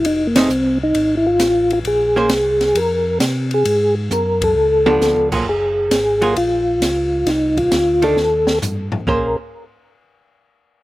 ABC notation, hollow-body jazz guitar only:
X:1
M:4/4
L:1/8
Q:"Swing" 1/4=133
K:Bbm
V:1 name="Hollow-body jazz guitar"
z [F,=A,E^G] z6 | z [B,DAc] z6 | z4 z [F,_C=D]2 [G,B,FA] | z3 [G,B,FA] z4 |
z3 [E,=A,=D] z4 | [B,DAc] z6 z |]